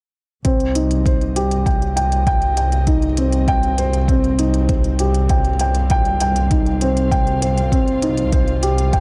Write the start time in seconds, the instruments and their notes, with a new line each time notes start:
0.45 double bass section C2, string section C3 C4, grand piano C4, kick, closed hi-hat
0.60 closed hi-hat
0.75 grand piano D#4, closed hi-hat
0.83 string section G4 D#5
0.91 closed hi-hat
1.06 grand piano C5, kick, closed hi-hat
1.21 closed hi-hat
1.36 grand piano G4, closed hi-hat
1.51 closed hi-hat
1.66 grand piano G5, kick, closed hi-hat
1.82 closed hi-hat
1.96 grand piano G5, closed hi-hat
2.12 closed hi-hat
2.27 grand piano G5, kick, closed hi-hat
2.42 closed hi-hat
2.57 grand piano G5, closed hi-hat
2.72 closed hi-hat
2.87 grand piano D#4, kick, closed hi-hat
3.02 closed hi-hat
3.17 grand piano C4, closed hi-hat
3.32 closed hi-hat
3.48 grand piano G5, kick, closed hi-hat
3.63 closed hi-hat
3.78 grand piano C5, closed hi-hat
3.93 closed hi-hat
4.08 grand piano C4, kick, closed hi-hat
4.24 closed hi-hat
4.39 grand piano D#4, closed hi-hat
4.54 closed hi-hat
4.69 grand piano C5, kick, closed hi-hat
4.84 closed hi-hat
4.99 grand piano G4, closed hi-hat
5.14 closed hi-hat
5.29 grand piano G5, kick, closed hi-hat
5.39 string section F5
5.45 closed hi-hat
5.59 grand piano G5, closed hi-hat
5.75 closed hi-hat
5.90 grand piano G5, kick, closed hi-hat
6.05 closed hi-hat
6.20 grand piano G5, closed hi-hat
6.36 closed hi-hat
6.47 string section F4, closed hi-hat
6.51 grand piano D#4, kick
6.66 closed hi-hat
6.81 grand piano C4, closed hi-hat
6.97 closed hi-hat
7.11 grand piano G5, kick, closed hi-hat
7.27 closed hi-hat
7.42 grand piano C5, closed hi-hat
7.58 closed hi-hat
7.72 grand piano C4, kick, closed hi-hat
7.88 closed hi-hat
8.02 grand piano D#4, closed hi-hat
8.17 closed hi-hat
8.32 grand piano C5, kick, closed hi-hat
8.48 closed hi-hat
8.63 grand piano G4, closed hi-hat
8.78 closed hi-hat
8.93 grand piano G5, kick, closed hi-hat